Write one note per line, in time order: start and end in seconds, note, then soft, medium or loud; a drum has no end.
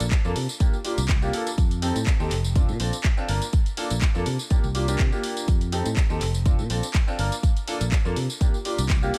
0.00 0.09 A#1 medium
0.00 closed hi-hat medium
0.00 tambourine medium
0.11 kick loud
0.11 clap loud
0.11 closed hi-hat medium
0.11 tambourine medium
0.25 0.33 F2 medium
0.25 0.34 A#3 loud
0.25 0.35 D4 medium
0.25 0.35 F4 medium
0.25 0.35 A4 loud
0.25 tambourine soft
0.36 0.46 C3 medium
0.36 open hi-hat loud
0.49 tambourine medium
0.60 0.74 A#3 medium
0.60 0.74 D4 medium
0.60 0.74 F4 medium
0.60 0.74 G4 medium
0.60 kick loud
0.60 closed hi-hat medium
0.60 tambourine medium
0.73 tambourine soft
0.84 0.98 A#3 medium
0.84 0.98 D4 medium
0.84 0.98 F4 medium
0.84 0.98 G4 medium
0.84 open hi-hat loud
0.98 1.29 C2 loud
0.98 closed hi-hat medium
0.98 tambourine medium
1.09 kick loud
1.09 clap loud
1.09 closed hi-hat medium
1.22 1.32 A#3 loud
1.22 1.32 D4 medium
1.22 1.32 F4 medium
1.22 1.32 G4 loud
1.22 tambourine soft
1.33 1.47 A#3 medium
1.33 1.47 D4 medium
1.33 1.47 F4 medium
1.33 1.47 A4 loud
1.33 open hi-hat loud
1.47 closed hi-hat medium
1.47 tambourine medium
1.58 1.91 F2 medium
1.58 kick loud
1.58 closed hi-hat medium
1.71 closed hi-hat soft
1.71 tambourine soft
1.82 1.96 C4 medium
1.82 1.96 D#4 medium
1.82 1.96 G4 medium
1.82 1.96 A4 loud
1.82 open hi-hat loud
1.95 2.04 A2 medium
1.95 closed hi-hat medium
1.95 tambourine medium
2.07 kick loud
2.07 clap loud
2.07 closed hi-hat medium
2.07 tambourine medium
2.20 2.28 D#2 medium
2.20 2.31 C4 medium
2.20 2.31 D#4 medium
2.20 2.31 G4 medium
2.20 2.32 A4 loud
2.20 tambourine soft
2.31 2.70 F1 medium
2.31 clap soft
2.31 open hi-hat loud
2.44 tambourine medium
2.55 2.69 C4 medium
2.55 2.69 D4 medium
2.55 2.69 F4 medium
2.55 2.69 A4 medium
2.55 kick loud
2.55 closed hi-hat medium
2.55 tambourine medium
2.69 2.77 A#2 medium
2.69 tambourine soft
2.80 2.90 A#1 loud
2.80 2.93 C4 medium
2.80 2.93 D4 medium
2.80 2.93 F4 medium
2.80 2.94 A4 medium
2.80 open hi-hat loud
2.93 closed hi-hat medium
2.93 tambourine medium
3.04 kick loud
3.04 clap loud
3.04 closed hi-hat medium
3.17 3.27 C4 loud
3.17 3.27 D4 medium
3.17 3.27 F4 medium
3.17 3.27 A4 loud
3.17 tambourine soft
3.28 3.39 G1 loud
3.28 3.42 A#3 medium
3.28 3.42 D4 medium
3.28 3.42 F4 medium
3.28 3.42 A#4 loud
3.28 open hi-hat loud
3.42 closed hi-hat medium
3.42 tambourine medium
3.53 kick loud
3.53 closed hi-hat medium
3.53 tambourine medium
3.66 closed hi-hat soft
3.66 tambourine soft
3.77 3.91 A#3 medium
3.77 3.91 D4 medium
3.77 3.91 F4 medium
3.77 3.91 A4 loud
3.77 open hi-hat loud
3.90 3.99 A#1 medium
3.90 closed hi-hat medium
3.90 tambourine medium
4.02 kick loud
4.02 clap loud
4.02 closed hi-hat medium
4.02 tambourine medium
4.15 4.24 F2 medium
4.15 4.25 A#3 medium
4.15 4.25 D4 medium
4.15 4.25 F4 medium
4.15 4.25 A4 loud
4.15 tambourine soft
4.26 4.36 C3 medium
4.26 open hi-hat loud
4.39 tambourine medium
4.50 4.64 A#3 medium
4.50 4.64 D4 medium
4.50 4.64 F4 medium
4.50 4.64 G4 medium
4.50 kick loud
4.50 closed hi-hat medium
4.50 tambourine medium
4.64 4.95 C2 loud
4.64 tambourine soft
4.75 4.85 A#3 medium
4.75 4.85 D4 medium
4.75 4.85 F4 medium
4.75 4.85 G4 medium
4.75 open hi-hat loud
4.88 4.99 A#3 medium
4.88 5.00 D4 medium
4.88 5.00 F4 medium
4.88 5.00 G4 loud
4.88 closed hi-hat medium
4.88 tambourine medium
4.99 5.09 C3 loud
4.99 kick loud
4.99 clap loud
4.99 closed hi-hat medium
4.99 tambourine medium
5.12 5.47 A#3 medium
5.12 5.47 D4 medium
5.12 5.47 F4 medium
5.12 5.47 G4 medium
5.12 tambourine soft
5.24 open hi-hat loud
5.37 closed hi-hat soft
5.37 tambourine medium
5.48 5.81 F2 loud
5.48 kick loud
5.48 closed hi-hat medium
5.48 tambourine medium
5.61 closed hi-hat medium
5.61 tambourine soft
5.72 5.86 C4 medium
5.72 5.86 D#4 medium
5.72 5.86 G4 medium
5.72 5.86 A4 loud
5.72 open hi-hat loud
5.86 5.94 A2 medium
5.86 closed hi-hat soft
5.86 tambourine medium
5.97 kick loud
5.97 clap loud
5.97 closed hi-hat medium
5.97 tambourine medium
6.10 6.19 D#2 medium
6.10 6.21 C4 medium
6.10 6.21 D#4 medium
6.10 6.22 G4 medium
6.10 6.22 A4 loud
6.10 tambourine soft
6.21 6.60 F1 medium
6.21 clap soft
6.21 open hi-hat loud
6.34 tambourine medium
6.45 6.59 C4 medium
6.45 6.59 D4 medium
6.45 6.59 F4 medium
6.45 6.59 A4 medium
6.45 kick loud
6.45 closed hi-hat medium
6.45 tambourine medium
6.59 6.67 A#2 medium
6.59 tambourine soft
6.70 6.80 A#1 medium
6.70 6.83 C4 medium
6.70 6.84 D4 medium
6.70 6.84 F4 medium
6.70 6.84 A4 medium
6.70 open hi-hat loud
6.83 closed hi-hat soft
6.83 tambourine medium
6.94 kick loud
6.94 clap loud
6.94 closed hi-hat medium
7.07 7.17 C4 loud
7.07 7.17 D4 medium
7.07 7.17 F4 medium
7.07 7.17 A4 loud
7.07 tambourine soft
7.19 7.29 G1 loud
7.19 7.32 A#3 medium
7.19 7.32 D4 medium
7.19 7.32 F4 medium
7.19 7.33 A#4 loud
7.19 open hi-hat loud
7.32 closed hi-hat soft
7.32 tambourine medium
7.43 kick loud
7.43 closed hi-hat medium
7.43 tambourine medium
7.57 closed hi-hat medium
7.57 tambourine soft
7.67 7.81 A#3 medium
7.67 7.81 D4 medium
7.67 7.81 F4 medium
7.67 7.81 A4 loud
7.67 open hi-hat loud
7.81 7.89 A#1 medium
7.81 closed hi-hat medium
7.81 tambourine medium
7.92 kick loud
7.92 clap loud
7.92 closed hi-hat medium
7.92 tambourine medium
8.05 8.14 F2 medium
8.05 8.15 A#3 loud
8.05 8.15 D4 medium
8.05 8.15 F4 medium
8.05 8.15 A4 loud
8.05 tambourine soft
8.16 8.26 C3 medium
8.16 open hi-hat loud
8.30 tambourine medium
8.40 8.54 A#3 medium
8.40 8.54 D4 medium
8.40 8.54 F4 medium
8.40 8.54 G4 medium
8.40 kick loud
8.40 closed hi-hat medium
8.40 tambourine medium
8.54 tambourine soft
8.65 8.78 A#3 medium
8.65 8.79 D4 medium
8.65 8.79 F4 medium
8.65 8.79 G4 medium
8.65 open hi-hat medium
8.78 9.10 C2 loud
8.78 closed hi-hat medium
8.78 tambourine medium
8.89 kick loud
8.89 clap loud
8.89 closed hi-hat medium
8.89 tambourine medium
9.02 9.12 A#3 loud
9.02 9.12 D4 medium
9.02 9.12 F4 medium
9.02 9.13 G4 loud
9.02 tambourine soft
9.14 9.18 A#3 medium
9.14 9.18 D4 medium
9.14 9.18 F4 medium
9.14 9.18 A4 medium
9.14 open hi-hat loud